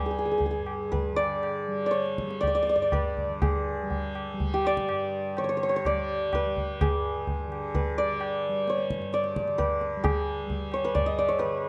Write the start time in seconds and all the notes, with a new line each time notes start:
Already playing: G2 D3 G3 B4 D5
0.02 G3
0.06 G#4
0.11 G#4
0.19 G#4
0.25 G#4
0.31 G#4
0.38 G#4, tabla tin, tabla ge
0.46 G#4
0.51 G#4
0.58 G2
0.66 tabla na
0.92 B4, tabla tin, tabla ge
1.13 D3 D5
1.19 tabla na
1.43 tabla na
1.68 G3
1.86 D5
1.91 C#5, tabla te
2.06 tabla te
2.18 tabla ke
2.22 G3
2.30 tabla te
2.41 D5, tabla na, tabla ge
2.47 D5
2.55 D5
2.63 D5
2.67 D5, tabla te
2.75 G2 D5
2.82 D5
2.92 B4, tabla na, tabla ge
3.17 tabla ge
3.29 D3
3.42 G#4, tabla na, tabla ge
3.83 G3
3.91 tabla tin, tabla ge
4.15 tabla na
4.34 G3
4.40 tabla tin, tabla ge
4.54 G4
4.65 D5, tabla na
4.77 tabla ke
4.89 G2, tabla na
5.37 D3 C#5, tabla na
5.44 C#5
5.49 C#5
5.57 C#5
5.63 C#5
5.69 C#5
5.76 C#5
5.85 D5, tabla na, tabla ge
5.93 G3
6.33 B4, tabla na, tabla ge
6.45 G3
6.57 tabla ge
6.81 G#4, tabla na, tabla ge
6.97 G2
7.27 tabla tin, tabla ge
7.47 D3
7.52 tabla na
7.75 B4, tabla tin, tabla ge
7.98 G3 D5
8.21 tabla na
8.49 G3
8.67 C#5, tabla te
8.78 tabla te
8.90 tabla ke
8.98 G2, tabla te
9.13 D5, tabla te
9.24 tabla te
9.36 tabla ke
9.48 D3, tabla te
9.58 B4, tabla na, tabla ge
9.81 tabla te
9.97 G3
10.04 G#4, tabla na, tabla ge
10.46 G3, tabla tin, tabla ge
10.72 C#5, tabla na
10.84 B4
10.95 G2 D5, tabla tin, tabla ge
11.06 D#5
11.19 D5
11.28 C#5
11.39 B4, tabla na
11.44 D3